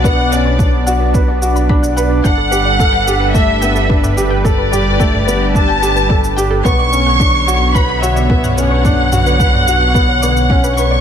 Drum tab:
SH |x-x-x-x-x-xx-xx-|x-x-x-x-x-xx-xx-|x-x-x-x-x-xx-xx-|x-x-x-x-x-xx-xx-|
T2 |----------------|-------------o--|o-o--o----------|-------------o--|
BD |o---o---o---o---|o---o---o---o---|o---o---o---o---|o---o---o---o---|

SH |x-xxx-x-x-xx-xx-|
T2 |o-o--o----------|
BD |o---o---o---o---|